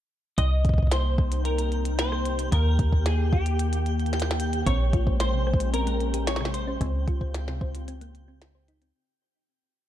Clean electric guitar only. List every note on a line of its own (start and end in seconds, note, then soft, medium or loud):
0.38 0.91 D#5 loud
0.92 1.45 C5 loud
1.45 1.98 A#4 medium
1.99 2.52 C5 medium
2.52 3.07 A#4 loud
3.06 3.31 G#4 medium
3.33 4.05 G4 medium
4.05 4.36 F4 medium
4.66 5.20 C#5 loud
5.20 5.70 C5 loud
5.74 6.27 A#4 medium
6.27 6.54 C#5 loud
6.54 8.37 C5 medium